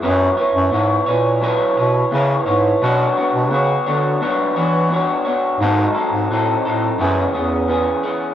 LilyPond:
<<
  \new Staff \with { instrumentName = "Clean electric guitar" } { \time 4/4 \key fis \mixolydian \tempo 4 = 86 <fis b e' b' cis''>8 <e' b' cis''>8 <b e' b' cis''>8 <e' b' cis''>8 <fis e' b' cis''>8 <e' b' cis''>8 <b e' b' cis''>8 <e' b' cis''>8 | <b, fis b d' fis' cis''>8 <b d' fis' cis''>8 <b fis' cis''>8 <b d' fis' cis''>8 <b, fis b d' fis' cis''>8 <b d' fis' cis''>8 <b d' fis' cis''>8 <b d' fis' cis''>8 | <gis, dis fis bis dis' a'>8 <fis bis dis' a'>8 <fis bis dis' a'>8 <fis bis dis' a'>8 <fis, cis e b cis' gis'>8 <e b cis' gis'>8 <e b cis' gis'>8 <e b cis' gis'>8 | }
  \new Staff \with { instrumentName = "Bass clarinet" } { \clef bass \time 4/4 \key fis \mixolydian fis,8 r16 fis,16 gis,8 ais,4 b,8 cis8 gis,8 | b,8 r16 b,16 cis8 d8 r8 e4 r8 | gis,8 r16 gis,16 a,8 a,8 fis,8 e,4 r8 | }
>>